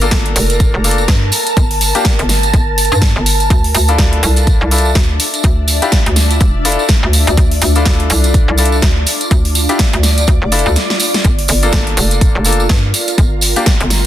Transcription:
Already playing: fm bass G1, ambient pad A#4 A5
0.01 grand piano A#3 D4 F4 A4, closed hi-hat, tambourine
0.11 fm bass G1, kick, snare, closed hi-hat, tambourine
0.26 closed hi-hat
0.36 fm bass F1, open hi-hat, tambourine
0.50 closed hi-hat, tambourine
0.60 kick, closed hi-hat, tambourine
0.74 fm bass F1
0.84 grand piano A#3 D4 F4 A4, open hi-hat, tambourine
0.91 closed hi-hat
0.98 tambourine
1.08 fm bass G2, kick, snare, closed hi-hat, tambourine
1.32 open hi-hat, tambourine
1.46 closed hi-hat, tambourine
1.57 fm bass G1, kick, closed hi-hat, tambourine
1.71 open hi-hat
1.81 open hi-hat, tambourine
1.95 grand piano A#3 D4 F4 G4, closed hi-hat, tambourine
2.05 kick, snare, closed hi-hat
2.19 fm bass G1, closed hi-hat
2.29 snare, open hi-hat, tambourine
2.43 closed hi-hat, tambourine
2.54 fm bass G1, kick, closed hi-hat, tambourine
2.78 open hi-hat, tambourine
2.85 closed hi-hat
2.92 fm bass G2, tambourine
3.02 kick, snare, closed hi-hat
3.16 fm bass G1
3.26 open hi-hat, tambourine
3.40 closed hi-hat, tambourine
3.50 fm bass D2, ambient pad D4, kick, closed hi-hat, tambourine
3.64 open hi-hat
3.75 fm bass D2, open hi-hat, tambourine
3.79 ambient pad F4
3.88 grand piano D4 E4 F4 A4, closed hi-hat, tambourine
3.98 fm bass D2, kick, snare, closed hi-hat, tambourine
4.13 closed hi-hat
4.23 fm bass C2, open hi-hat, tambourine
4.36 closed hi-hat, tambourine
4.47 kick, closed hi-hat, tambourine
4.61 fm bass C2
4.66 ambient pad E5
4.71 grand piano D4 E4 F4 A4, open hi-hat, tambourine
4.78 closed hi-hat
4.85 tambourine
4.95 fm bass D2, kick, snare, closed hi-hat, tambourine
5.20 open hi-hat, tambourine
5.34 closed hi-hat, tambourine
5.43 fm bass D2, kick, closed hi-hat, tambourine
5.68 open hi-hat, tambourine
5.82 grand piano D4 E4 F4 G4, closed hi-hat, tambourine
5.92 kick, snare, closed hi-hat, tambourine
6.06 fm bass D2, closed hi-hat
6.16 snare, open hi-hat, tambourine
6.30 closed hi-hat, tambourine
6.40 fm bass E1, kick, closed hi-hat, tambourine
6.65 grand piano D4 E4 F4 A4, open hi-hat, tambourine
6.72 closed hi-hat
6.79 tambourine
6.88 kick, snare, closed hi-hat, tambourine
7.03 fm bass D2
7.13 open hi-hat, tambourine
7.27 fm bass D2, closed hi-hat, tambourine
7.37 fm bass D2, kick, closed hi-hat, tambourine
7.51 open hi-hat
7.62 fm bass D2, open hi-hat, tambourine
7.75 grand piano D4 E4 F4 A4, closed hi-hat, tambourine
7.86 fm bass D2, kick, snare, closed hi-hat, tambourine
8.00 closed hi-hat
8.10 fm bass C2, open hi-hat, tambourine
8.24 closed hi-hat, tambourine
8.34 kick, closed hi-hat, tambourine
8.48 fm bass C2
8.57 grand piano D4 E4 F4 A4, ambient pad D5, open hi-hat, tambourine
8.65 closed hi-hat
8.72 tambourine
8.82 fm bass D2, kick, snare, closed hi-hat
9.06 open hi-hat, tambourine
9.21 closed hi-hat, tambourine
9.31 fm bass D2, kick, closed hi-hat, tambourine
9.45 open hi-hat
9.55 open hi-hat, tambourine
9.69 grand piano D4 E4 F4 G4, closed hi-hat, tambourine
9.79 kick, snare, closed hi-hat, tambourine
9.93 fm bass D2, closed hi-hat
10.03 snare, open hi-hat, tambourine
10.18 closed hi-hat, tambourine
10.27 fm bass D2, kick, closed hi-hat, tambourine
10.42 fm bass F1
10.52 grand piano D4 E4 F4 A4, open hi-hat, tambourine
10.59 closed hi-hat
10.66 fm bass D2, tambourine
10.76 snare, closed hi-hat, tambourine
10.90 snare
11.00 open hi-hat, tambourine
11.14 snare, closed hi-hat, tambourine
11.25 fm bass G1, kick, closed hi-hat, tambourine
11.39 open hi-hat
11.43 ambient pad A#4
11.48 fm bass G1, open hi-hat, tambourine
11.63 grand piano A#3 D4 F4 A4, closed hi-hat, tambourine
11.72 fm bass G1, kick, snare, closed hi-hat, tambourine
11.87 closed hi-hat
11.97 fm bass F1, open hi-hat, tambourine
12.11 closed hi-hat, tambourine
12.21 kick, closed hi-hat, tambourine
12.35 fm bass F1
12.45 grand piano A#3 D4 F4 A4, open hi-hat, tambourine
12.53 closed hi-hat
12.60 tambourine
12.69 fm bass G2, kick, snare, closed hi-hat, tambourine
12.85 ambient pad G5
12.94 open hi-hat, tambourine
13.08 closed hi-hat, tambourine
13.18 fm bass G1, kick, closed hi-hat, tambourine
13.41 open hi-hat, tambourine
13.56 grand piano A#3 D4 F4 G4, closed hi-hat, tambourine
13.66 kick, snare, closed hi-hat, tambourine
13.81 fm bass G1, closed hi-hat
13.90 snare, open hi-hat, tambourine

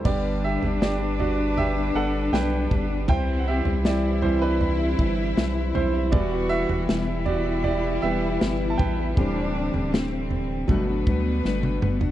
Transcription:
0.04 sub bass G1, steel-string acoustic guitar G2 D3 G3 B3 D4 G4, grand piano D3 G3 B3 G4 D5, string section G3 D4 B4, cello section D4, kick, floor tom, crash
0.44 grand piano G4 E5
0.62 sub bass G1, steel-string acoustic guitar G3 B3 D4 G4, floor tom
0.80 sub bass G1, steel-string acoustic guitar G2 D3 G3 B3 D4 G4, grand piano G4 D5, snare
0.99 steel-string acoustic guitar G3 B3 D4 G4
1.20 grand piano F#4 D5, floor tom
1.57 grand piano G4 E5, floor tom
1.74 steel-string acoustic guitar G3 B3 D4 G4
1.94 sub bass G1, steel-string acoustic guitar G3 B3 D4 G4, grand piano A4 F#5
2.31 sub bass B1, steel-string acoustic guitar G2 D3 G3 B3 D4 G4, grand piano B4 G5, snare
2.69 sub bass G1, steel-string acoustic guitar G3 B3 D4 G4, kick, floor tom
2.88 steel-string acoustic guitar G3 B3 D4 G4
3.08 sub bass C2, steel-string acoustic guitar C3 E3 G3 C4 E4, cello section C4, string section C4 E4, grand piano C5 G5, kick, floor tom
3.39 grand piano F#5
3.48 grand piano G4 E5
3.65 sub bass C2, steel-string acoustic guitar G3 C4 E4, floor tom
3.83 steel-string acoustic guitar C3 E3 G3 C4 E4, cello section E4, grand piano G4 D5, snare
4.22 grand piano E3 G3 C4 E4 C5, floor tom
4.42 grand piano D4 B4
4.61 floor tom
4.79 steel-string acoustic guitar G3 C4 E4
4.97 sub bass G1, steel-string acoustic guitar E3 G3 C4 E4, kick
5.36 sub bass B1, steel-string acoustic guitar C3 E3 G3 C4 E4, snare
5.54 steel-string acoustic guitar G3 C4 E4
5.73 sub bass B1, steel-string acoustic guitar E3 G3 C4 E4, grand piano E4 C5, floor tom
5.93 steel-string acoustic guitar G3 C4 E4
6.11 sub bass E1, steel-string acoustic guitar E2 B2 E3 G3 B3 E4, grand piano E3 G3 B3 E4 D5, string section E3 G3 B3, cello section F#4, kick, floor tom
6.49 grand piano E4 E5
6.69 sub bass E1, steel-string acoustic guitar E3 G3 B3 E4, floor tom
6.87 sub bass E1, steel-string acoustic guitar E2 B2 E3 G3 B3 E4, cello section E4, snare
7.07 steel-string acoustic guitar E3 G3 B3 E4
7.26 grand piano F#4 D5, floor tom
7.64 grand piano G4 D5, floor tom
7.83 steel-string acoustic guitar E3 G3 B3 E4
8.02 sub bass E1, steel-string acoustic guitar E3 G3 B3 E4, grand piano E3 G3 B3 G4 E5
8.41 sub bass G1, steel-string acoustic guitar E2 B2 E3 G3 B3 E4, snare
8.70 grand piano A5
8.78 sub bass A1, steel-string acoustic guitar E3 G3 B3 E4, grand piano B4 G5, kick, floor tom
8.98 steel-string acoustic guitar E3 G3 B3 E4
9.15 sub bass D1, steel-string acoustic guitar D3 A3 C4 G4, string section D3 C4, grand piano E3 G3 C4, cello section D4, kick, floor tom
9.73 sub bass D1, steel-string acoustic guitar A3 C4 G4, floor tom
9.92 steel-string acoustic guitar D3 A3 C4 G4, cello section C4, snare
10.11 steel-string acoustic guitar A3 C4 G4
10.31 floor tom
10.68 sub bass G1, grand piano B2 F#3 A3, steel-string acoustic guitar G3 B3 D4 F#4, string section B3 D4 B4, cello section B3, kick, floor tom
10.87 steel-string acoustic guitar B3 D4 F#4
11.06 sub bass D2, steel-string acoustic guitar G3 B3 D4 F#4, kick
11.44 sub bass G1, steel-string acoustic guitar G3 B3 D4 F#4, cello section A3, snare
11.63 high tom
11.81 sub bass F#1, steel-string acoustic guitar G3 B3 D4 F#4, cello section B3, mid tom
12.00 steel-string acoustic guitar B3 D4 F#4, floor tom

